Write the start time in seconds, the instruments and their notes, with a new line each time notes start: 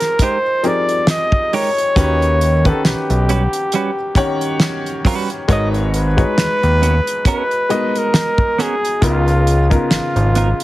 Already playing: grand piano F3 G#3 C4 D#4 G4 G#4 A#4 C5, flugelhorn A#4
0.00 snare, closed hi-hat
0.19 clean electric guitar G#3 D#4 G4 A#4, flugelhorn C5, kick, closed hi-hat
0.63 grand piano F3 C4 D#4 G4 G#4 A#4, flugelhorn D5, closed hi-hat
0.89 closed hi-hat
1.07 flugelhorn D#5, muted clean electric guitar stroke, snare, closed hi-hat
1.32 kick
1.53 clean electric guitar G#3 D#4 G4 A#4, flugelhorn C#5, open hi-hat
1.78 closed hi-hat
1.95 analog synth bass D#2, grand piano D#3 C#4 F#4 G4 B4, kick, closed hi-hat
2.22 closed hi-hat
2.41 closed hi-hat
2.64 grand piano D#3 C#4 G4 B4 F#5, flugelhorn A4, kick, closed hi-hat
2.85 analog synth bass B1, flugelhorn G4, snare, closed hi-hat
3.10 analog synth bass B1, closed hi-hat
3.29 clean electric guitar G3 C#4 F#4 B4, closed hi-hat
3.53 closed hi-hat
3.72 clean electric guitar G3 C#4 F#4 B4, closed hi-hat
4.15 grand piano D#3 C#4 G4 C#5 F#5, kick, closed hi-hat
4.41 closed hi-hat
4.60 muted clean electric guitar stroke, snare, closed hi-hat
4.86 closed hi-hat
5.05 clean electric guitar G3 C#4 F#4 B4, kick, snare, open hi-hat
5.30 closed hi-hat
5.48 analog synth bass G#1, grand piano G#3 D#4 F#4 A#4 B4 C#5, kick, closed hi-hat
5.52 flugelhorn D#5
5.74 closed hi-hat
5.94 flugelhorn B4, closed hi-hat
6.17 grand piano G#3 D#4 F#4 G#4 B4 C#5, kick, closed hi-hat
6.38 analog synth bass D#2, snare, closed hi-hat
6.63 analog synth bass D#2, closed hi-hat
6.82 clean electric guitar B3 C#4 F#4 A#4, closed hi-hat
7.07 closed hi-hat
7.25 clean electric guitar B3 C#4 F#4 A#4, flugelhorn B4, kick, closed hi-hat
7.51 closed hi-hat
7.69 grand piano G#3 B3 D#4 F#4 A#4 D#5, closed hi-hat
7.96 flugelhorn A#4, closed hi-hat
8.14 muted clean electric guitar stroke, snare, closed hi-hat
8.38 kick
8.58 clean electric guitar B3 C#4 F#4 A#4, flugelhorn G#4, snare, closed hi-hat
8.85 closed hi-hat
9.01 analog synth bass C#2, grand piano C#3 B3 D#4 F4 A#4, flugelhorn F4, kick, closed hi-hat
9.28 closed hi-hat
9.47 closed hi-hat
9.70 grand piano C#3 B3 D#4 F4 A#4, flugelhorn F4, kick, closed hi-hat
9.91 analog synth bass G#1, snare, closed hi-hat
10.16 analog synth bass G#1, closed hi-hat
10.35 clean electric guitar B3 D#4 F4 A#4, closed hi-hat
10.60 closed hi-hat